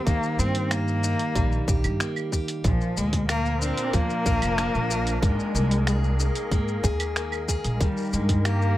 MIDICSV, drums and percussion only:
0, 0, Header, 1, 2, 480
1, 0, Start_track
1, 0, Key_signature, -3, "major"
1, 0, Tempo, 645161
1, 50, Time_signature, 4, 2, 24, 8
1, 6530, End_track
2, 0, Start_track
2, 0, Title_t, "Drums"
2, 49, Note_on_c, 9, 36, 119
2, 49, Note_on_c, 9, 42, 38
2, 51, Note_on_c, 9, 82, 43
2, 124, Note_off_c, 9, 36, 0
2, 124, Note_off_c, 9, 42, 0
2, 126, Note_off_c, 9, 82, 0
2, 171, Note_on_c, 9, 82, 23
2, 245, Note_off_c, 9, 82, 0
2, 291, Note_on_c, 9, 82, 80
2, 366, Note_off_c, 9, 82, 0
2, 408, Note_on_c, 9, 42, 55
2, 482, Note_off_c, 9, 42, 0
2, 528, Note_on_c, 9, 26, 97
2, 528, Note_on_c, 9, 42, 41
2, 530, Note_on_c, 9, 82, 47
2, 603, Note_off_c, 9, 26, 0
2, 603, Note_off_c, 9, 42, 0
2, 605, Note_off_c, 9, 82, 0
2, 651, Note_on_c, 9, 82, 21
2, 725, Note_off_c, 9, 82, 0
2, 769, Note_on_c, 9, 82, 84
2, 844, Note_off_c, 9, 82, 0
2, 889, Note_on_c, 9, 42, 49
2, 963, Note_off_c, 9, 42, 0
2, 1008, Note_on_c, 9, 42, 40
2, 1009, Note_on_c, 9, 36, 106
2, 1010, Note_on_c, 9, 82, 44
2, 1082, Note_off_c, 9, 42, 0
2, 1083, Note_off_c, 9, 36, 0
2, 1085, Note_off_c, 9, 82, 0
2, 1130, Note_on_c, 9, 82, 22
2, 1205, Note_off_c, 9, 82, 0
2, 1249, Note_on_c, 9, 36, 109
2, 1251, Note_on_c, 9, 82, 85
2, 1324, Note_off_c, 9, 36, 0
2, 1325, Note_off_c, 9, 82, 0
2, 1370, Note_on_c, 9, 42, 49
2, 1370, Note_on_c, 9, 75, 60
2, 1372, Note_on_c, 9, 82, 32
2, 1444, Note_off_c, 9, 42, 0
2, 1444, Note_off_c, 9, 75, 0
2, 1447, Note_off_c, 9, 82, 0
2, 1489, Note_on_c, 9, 26, 101
2, 1489, Note_on_c, 9, 42, 41
2, 1491, Note_on_c, 9, 82, 45
2, 1564, Note_off_c, 9, 26, 0
2, 1564, Note_off_c, 9, 42, 0
2, 1566, Note_off_c, 9, 82, 0
2, 1609, Note_on_c, 9, 75, 74
2, 1611, Note_on_c, 9, 82, 21
2, 1683, Note_off_c, 9, 75, 0
2, 1685, Note_off_c, 9, 82, 0
2, 1729, Note_on_c, 9, 36, 62
2, 1730, Note_on_c, 9, 82, 84
2, 1803, Note_off_c, 9, 36, 0
2, 1804, Note_off_c, 9, 82, 0
2, 1847, Note_on_c, 9, 42, 53
2, 1849, Note_on_c, 9, 82, 35
2, 1922, Note_off_c, 9, 42, 0
2, 1924, Note_off_c, 9, 82, 0
2, 1966, Note_on_c, 9, 42, 38
2, 1968, Note_on_c, 9, 36, 115
2, 1968, Note_on_c, 9, 82, 45
2, 2040, Note_off_c, 9, 42, 0
2, 2043, Note_off_c, 9, 36, 0
2, 2043, Note_off_c, 9, 82, 0
2, 2090, Note_on_c, 9, 82, 23
2, 2164, Note_off_c, 9, 82, 0
2, 2209, Note_on_c, 9, 82, 78
2, 2283, Note_off_c, 9, 82, 0
2, 2328, Note_on_c, 9, 36, 61
2, 2328, Note_on_c, 9, 42, 55
2, 2330, Note_on_c, 9, 82, 33
2, 2402, Note_off_c, 9, 42, 0
2, 2403, Note_off_c, 9, 36, 0
2, 2404, Note_off_c, 9, 82, 0
2, 2448, Note_on_c, 9, 26, 96
2, 2448, Note_on_c, 9, 42, 41
2, 2450, Note_on_c, 9, 82, 44
2, 2522, Note_off_c, 9, 26, 0
2, 2522, Note_off_c, 9, 42, 0
2, 2524, Note_off_c, 9, 82, 0
2, 2570, Note_on_c, 9, 82, 20
2, 2644, Note_off_c, 9, 82, 0
2, 2690, Note_on_c, 9, 82, 81
2, 2764, Note_off_c, 9, 82, 0
2, 2808, Note_on_c, 9, 42, 48
2, 2810, Note_on_c, 9, 82, 34
2, 2883, Note_off_c, 9, 42, 0
2, 2885, Note_off_c, 9, 82, 0
2, 2927, Note_on_c, 9, 42, 40
2, 2929, Note_on_c, 9, 36, 99
2, 2929, Note_on_c, 9, 82, 43
2, 3001, Note_off_c, 9, 42, 0
2, 3003, Note_off_c, 9, 36, 0
2, 3004, Note_off_c, 9, 82, 0
2, 3050, Note_on_c, 9, 82, 21
2, 3124, Note_off_c, 9, 82, 0
2, 3168, Note_on_c, 9, 82, 81
2, 3169, Note_on_c, 9, 36, 97
2, 3243, Note_off_c, 9, 36, 0
2, 3243, Note_off_c, 9, 82, 0
2, 3289, Note_on_c, 9, 42, 51
2, 3289, Note_on_c, 9, 75, 60
2, 3291, Note_on_c, 9, 82, 34
2, 3364, Note_off_c, 9, 42, 0
2, 3364, Note_off_c, 9, 75, 0
2, 3366, Note_off_c, 9, 82, 0
2, 3408, Note_on_c, 9, 26, 93
2, 3408, Note_on_c, 9, 42, 44
2, 3410, Note_on_c, 9, 82, 48
2, 3482, Note_off_c, 9, 26, 0
2, 3482, Note_off_c, 9, 42, 0
2, 3484, Note_off_c, 9, 82, 0
2, 3531, Note_on_c, 9, 82, 20
2, 3605, Note_off_c, 9, 82, 0
2, 3649, Note_on_c, 9, 82, 84
2, 3723, Note_off_c, 9, 82, 0
2, 3770, Note_on_c, 9, 42, 54
2, 3773, Note_on_c, 9, 82, 32
2, 3845, Note_off_c, 9, 42, 0
2, 3847, Note_off_c, 9, 82, 0
2, 3888, Note_on_c, 9, 36, 114
2, 3889, Note_on_c, 9, 42, 43
2, 3892, Note_on_c, 9, 82, 40
2, 3962, Note_off_c, 9, 36, 0
2, 3964, Note_off_c, 9, 42, 0
2, 3966, Note_off_c, 9, 82, 0
2, 4012, Note_on_c, 9, 82, 22
2, 4087, Note_off_c, 9, 82, 0
2, 4131, Note_on_c, 9, 82, 78
2, 4206, Note_off_c, 9, 82, 0
2, 4250, Note_on_c, 9, 42, 52
2, 4252, Note_on_c, 9, 82, 36
2, 4325, Note_off_c, 9, 42, 0
2, 4327, Note_off_c, 9, 82, 0
2, 4368, Note_on_c, 9, 26, 89
2, 4368, Note_on_c, 9, 42, 42
2, 4370, Note_on_c, 9, 82, 44
2, 4442, Note_off_c, 9, 26, 0
2, 4442, Note_off_c, 9, 42, 0
2, 4445, Note_off_c, 9, 82, 0
2, 4490, Note_on_c, 9, 82, 20
2, 4565, Note_off_c, 9, 82, 0
2, 4609, Note_on_c, 9, 82, 74
2, 4683, Note_off_c, 9, 82, 0
2, 4728, Note_on_c, 9, 42, 49
2, 4730, Note_on_c, 9, 82, 32
2, 4802, Note_off_c, 9, 42, 0
2, 4804, Note_off_c, 9, 82, 0
2, 4847, Note_on_c, 9, 36, 101
2, 4848, Note_on_c, 9, 42, 44
2, 4850, Note_on_c, 9, 82, 44
2, 4922, Note_off_c, 9, 36, 0
2, 4922, Note_off_c, 9, 42, 0
2, 4924, Note_off_c, 9, 82, 0
2, 4970, Note_on_c, 9, 82, 22
2, 5044, Note_off_c, 9, 82, 0
2, 5087, Note_on_c, 9, 36, 98
2, 5089, Note_on_c, 9, 82, 77
2, 5162, Note_off_c, 9, 36, 0
2, 5163, Note_off_c, 9, 82, 0
2, 5207, Note_on_c, 9, 42, 52
2, 5207, Note_on_c, 9, 75, 59
2, 5209, Note_on_c, 9, 82, 32
2, 5282, Note_off_c, 9, 42, 0
2, 5282, Note_off_c, 9, 75, 0
2, 5284, Note_off_c, 9, 82, 0
2, 5328, Note_on_c, 9, 26, 95
2, 5328, Note_on_c, 9, 42, 46
2, 5330, Note_on_c, 9, 82, 44
2, 5402, Note_off_c, 9, 26, 0
2, 5402, Note_off_c, 9, 42, 0
2, 5404, Note_off_c, 9, 82, 0
2, 5447, Note_on_c, 9, 75, 80
2, 5449, Note_on_c, 9, 82, 20
2, 5521, Note_off_c, 9, 75, 0
2, 5523, Note_off_c, 9, 82, 0
2, 5568, Note_on_c, 9, 36, 57
2, 5569, Note_on_c, 9, 82, 85
2, 5642, Note_off_c, 9, 36, 0
2, 5643, Note_off_c, 9, 82, 0
2, 5688, Note_on_c, 9, 42, 55
2, 5690, Note_on_c, 9, 82, 33
2, 5762, Note_off_c, 9, 42, 0
2, 5764, Note_off_c, 9, 82, 0
2, 5807, Note_on_c, 9, 42, 43
2, 5808, Note_on_c, 9, 36, 109
2, 5809, Note_on_c, 9, 82, 40
2, 5881, Note_off_c, 9, 42, 0
2, 5882, Note_off_c, 9, 36, 0
2, 5884, Note_off_c, 9, 82, 0
2, 5929, Note_on_c, 9, 82, 21
2, 5948, Note_off_c, 9, 82, 0
2, 5948, Note_on_c, 9, 82, 16
2, 5963, Note_off_c, 9, 82, 0
2, 5963, Note_on_c, 9, 82, 15
2, 5982, Note_off_c, 9, 82, 0
2, 5982, Note_on_c, 9, 82, 11
2, 5997, Note_off_c, 9, 82, 0
2, 5997, Note_on_c, 9, 82, 9
2, 6015, Note_off_c, 9, 82, 0
2, 6015, Note_on_c, 9, 82, 7
2, 6031, Note_off_c, 9, 82, 0
2, 6031, Note_on_c, 9, 82, 6
2, 6049, Note_off_c, 9, 82, 0
2, 6049, Note_on_c, 9, 82, 75
2, 6123, Note_off_c, 9, 82, 0
2, 6168, Note_on_c, 9, 36, 60
2, 6168, Note_on_c, 9, 42, 59
2, 6170, Note_on_c, 9, 82, 33
2, 6242, Note_off_c, 9, 42, 0
2, 6243, Note_off_c, 9, 36, 0
2, 6244, Note_off_c, 9, 82, 0
2, 6288, Note_on_c, 9, 26, 99
2, 6288, Note_on_c, 9, 42, 49
2, 6290, Note_on_c, 9, 82, 46
2, 6362, Note_off_c, 9, 26, 0
2, 6362, Note_off_c, 9, 42, 0
2, 6365, Note_off_c, 9, 82, 0
2, 6411, Note_on_c, 9, 82, 21
2, 6485, Note_off_c, 9, 82, 0
2, 6530, End_track
0, 0, End_of_file